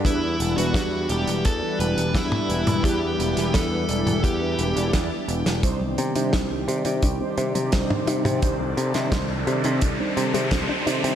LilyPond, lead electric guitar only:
\new Staff \with { instrumentName = "Lead electric guitar" } { \time 4/4 \key c \lydian \tempo 4 = 86 e'8. fis'8. g'8 a'8 b'8 e'4 | g'4 a'4 g'4 r4 | r1 | r1 | }